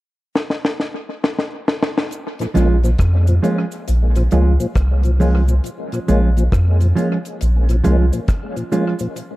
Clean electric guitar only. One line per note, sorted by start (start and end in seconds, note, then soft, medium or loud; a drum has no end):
2.54 2.75 F3 medium
2.54 2.76 G#3 medium
2.54 2.76 C#4 medium
2.54 2.76 F4 medium
3.43 3.63 F3 medium
3.43 3.64 G#3 medium
3.43 3.64 C#4 medium
3.43 3.64 F4 medium
4.32 4.52 F3 medium
4.32 4.52 G#3 medium
4.32 4.53 C#4 medium
4.32 4.53 F4 medium
5.20 5.40 F3 medium
5.20 5.40 G#3 medium
5.20 5.41 C#4 medium
5.20 5.41 F4 medium
6.08 6.29 F3 medium
6.08 6.29 G#3 medium
6.08 6.29 C#4 medium
6.08 6.29 F4 medium
6.96 7.16 F3 medium
6.96 7.17 G#3 medium
6.96 7.17 C#4 loud
6.96 7.17 F4 medium
7.84 8.05 F3 medium
7.84 8.05 G#3 medium
7.84 8.05 C#4 medium
7.84 8.05 F4 loud
8.12 muted clean electric guitar stroke soft
8.72 8.93 F3 medium
8.72 8.93 G#3 medium
8.72 8.93 C#4 medium
8.72 8.93 F4 loud